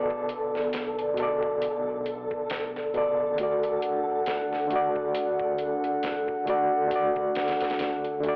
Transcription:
Already playing: B2 B3 A4 D5
0.10 kick
0.29 closed hi-hat
0.55 B1, snare
0.73 snare, closed hi-hat
0.98 closed hi-hat
1.14 B2 B3, closed hi-hat
1.18 B1 A4
1.22 D5
1.43 kick
1.62 closed hi-hat
2.06 closed hi-hat
2.31 kick
2.50 snare, closed hi-hat
2.76 snare
2.93 F#1 B2 B3 A4, closed hi-hat
2.97 D5
3.35 D2 D3 A3 D4 F#5, kick, closed hi-hat
3.41 F#4 D5
3.63 closed hi-hat
3.82 closed hi-hat
4.08 D2
4.26 snare, closed hi-hat
4.53 snare
4.67 D2 D3 A3, closed hi-hat
4.73 F#4 D5
4.96 kick
5.15 closed hi-hat
5.40 kick
5.59 closed hi-hat
5.84 closed hi-hat
6.03 C2, snare, closed hi-hat
6.28 kick
6.46 D3 A3 F#4 D5, closed hi-hat
6.87 D3 A3, kick, closed hi-hat
6.92 D2 F#4 D5
7.16 kick
7.35 snare, closed hi-hat
7.48 snare, closed hi-hat
7.61 D2, snare, closed hi-hat
7.70 snare, closed hi-hat
7.79 snare, closed hi-hat
8.04 closed hi-hat
8.21 D2 D3 A3, closed hi-hat
8.26 F#4 D5

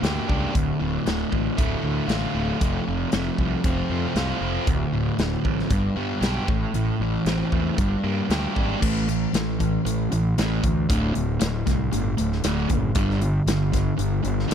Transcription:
Already playing: G2 A#3
0.02 D2 G4, snare, closed hi-hat
0.28 C#2 D4, kick
0.54 D1 D2, kick, closed hi-hat
0.80 D1 A2
1.06 D1 D3, snare, closed hi-hat
1.31 A1 A2, kick
1.57 D1 A3, kick, closed hi-hat
1.82 D2 D3
2.07 A1 F4, snare, closed hi-hat
2.33 D1 A3
2.58 F1 F2, kick, closed hi-hat
2.85 F1 C3
3.12 F1 A3, snare, closed hi-hat
3.38 C2 F3, kick
3.64 F1 C4, kick, closed hi-hat
3.90 F2 A3
4.15 C2 F4, snare, closed hi-hat
4.41 F1 C4
4.67 D1 D2, kick, closed hi-hat
4.92 D1 A2
5.18 D1 D3, snare, closed hi-hat
5.45 A1 A2, kick
5.59 snare
5.70 G1 G2, kick, closed hi-hat
5.96 G2 B3
6.20 B1 G4, snare, closed hi-hat
6.47 A1 A2, kick
6.74 A1 A2, closed hi-hat
7.00 A1 E3
7.25 A1 C4, snare, closed hi-hat
7.52 E2 A3, kick
7.78 G1 G2, kick, closed hi-hat
8.04 G2 A#3
8.29 D2 G4, snare, closed hi-hat
8.55 G#1 D4, kick
8.80 A1 A2 E3 A3, kick, crash
9.07 A2 E3, closed hi-hat
9.33 A1 A2 E3, snare, closed hi-hat
9.59 A2 E3, kick, closed hi-hat
9.85 A1 A2 E3, closed hi-hat
10.12 A1 A2 E3, closed hi-hat
10.38 A1 A2 E3 A3, snare, closed hi-hat
10.63 D2 A2 E3, kick, closed hi-hat
10.89 D1 D2 A2 D3, kick, closed hi-hat
11.14 D1 D2 A2, closed hi-hat
11.40 D1 D2 A2, snare, closed hi-hat
11.66 C2 D2 A2, kick, snare, closed hi-hat
11.91 G1 D2 A2, closed hi-hat
12.17 D1 D2 A2, closed hi-hat
12.32 snare
12.44 D1 D2 A2 D3, snare, closed hi-hat
12.69 F#1 D2 A2, kick, closed hi-hat
12.95 G1 G2 D3 G3, kick, closed hi-hat
13.10 snare
13.21 G2 D3, closed hi-hat
13.46 G1 G2 D3, snare, closed hi-hat
13.72 G2 D3, kick, snare, closed hi-hat
13.97 G1 G2 D3, closed hi-hat
14.23 G1 G2 D3, closed hi-hat
14.39 snare
14.48 G1 G2 D3 G3, closed hi-hat

